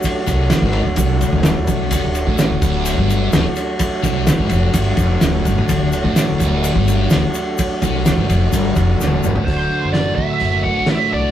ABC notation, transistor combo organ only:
X:1
M:4/4
L:1/8
Q:1/4=127
K:Dmix
V:1 name="Transistor combo organ"
[F,A,DF]8- | [F,A,DF]8- | [F,A,DF]8- | [F,A,DF]8- |
[F,A,DF]8 | [F,A,DF]8 |]